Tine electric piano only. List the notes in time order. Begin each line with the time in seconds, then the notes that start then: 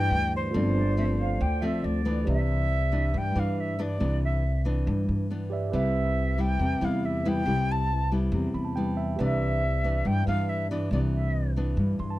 Already playing: E4 G4 B4 D5
0.51 F4 A4 C5
0.57 D5
2.25 G4 B4 D5
2.30 E5
5.50 G4 B4 D5 E5
5.70 C4 G4 B4
5.76 E5
8.54 B5
8.65 A5
8.76 G5
8.97 E5
9.16 G4 B4 D5
9.22 E5
12.00 C6
12.10 A5